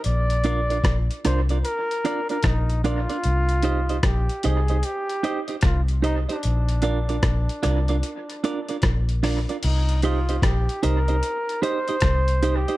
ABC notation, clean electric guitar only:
X:1
M:4/4
L:1/16
Q:"Swing 16ths" 1/4=75
K:Cm
V:1 name="Clean electric guitar"
z2 [DFBd] [DFBd] z2 [DFBd] [DFBd] z2 [DFBd] [DFBd] z2 [DFBd] [DFBd] | z2 [EGce] [EGce] z2 [EGce] [EGce] z2 [EGce] [EGce] z2 [EGce] [EGce] | z2 [DFBd] [DFBd] z2 [DFBd] [DFBd] z2 [DFBd] [DFBd] z2 [DFBd] [DFBd] | z2 [EGce] [EGce] z2 [EGce] [EGce] z2 [EGce] [EGce] z2 [EGce] [EGce] |]